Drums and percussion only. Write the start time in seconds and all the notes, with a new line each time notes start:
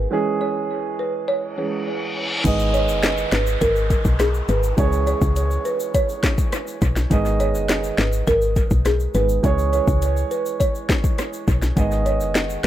2.45 kick, closed hi-hat, crash, shaker
2.59 shaker
2.74 closed hi-hat, shaker
2.89 shaker
3.03 snare, clap, closed hi-hat, shaker
3.18 shaker
3.32 snare, clap, closed hi-hat, shaker
3.47 shaker
3.61 kick, closed hi-hat, shaker
3.76 shaker
3.90 kick, closed hi-hat, shaker
4.05 kick, shaker
4.19 cross-stick, snare, closed hi-hat, shaker
4.34 shaker
4.49 closed hi-hat, shaker
4.63 shaker
4.78 kick, closed hi-hat, shaker
4.92 shaker
5.07 closed hi-hat, shaker
5.21 kick, shaker
5.36 closed hi-hat, shaker
5.51 shaker
5.65 closed hi-hat, shaker
5.80 shaker
5.94 kick, closed hi-hat, shaker
6.09 shaker
6.23 kick, snare, clap, closed hi-hat, shaker
6.38 kick, shaker
6.52 cross-stick, closed hi-hat, shaker
6.67 shaker
6.82 kick, closed hi-hat, shaker
6.96 snare, shaker
7.11 kick, closed hi-hat, shaker
7.25 shaker
7.40 closed hi-hat, shaker
7.55 shaker
7.69 snare, clap, closed hi-hat, shaker
7.84 shaker
7.98 snare, clap, closed hi-hat, shaker
8.13 shaker
8.27 kick, closed hi-hat, shaker
8.42 shaker
8.56 kick, closed hi-hat, shaker
8.71 kick, shaker
8.85 cross-stick, snare, closed hi-hat, shaker
9.00 shaker
9.14 closed hi-hat, shaker
9.29 shaker
9.44 kick, closed hi-hat, shaker
9.58 shaker
9.73 closed hi-hat, shaker
9.88 kick, shaker
10.02 closed hi-hat, shaker
10.17 shaker
10.31 closed hi-hat, shaker
10.46 shaker
10.60 kick, closed hi-hat, shaker
10.75 shaker
10.89 kick, snare, clap, closed hi-hat, shaker
11.04 kick, shaker
11.18 cross-stick, closed hi-hat, shaker
11.33 shaker
11.48 kick, closed hi-hat, shaker
11.62 snare, shaker
11.77 kick, closed hi-hat, shaker
11.92 shaker
12.06 closed hi-hat, shaker
12.21 shaker
12.35 snare, clap, closed hi-hat, shaker
12.50 shaker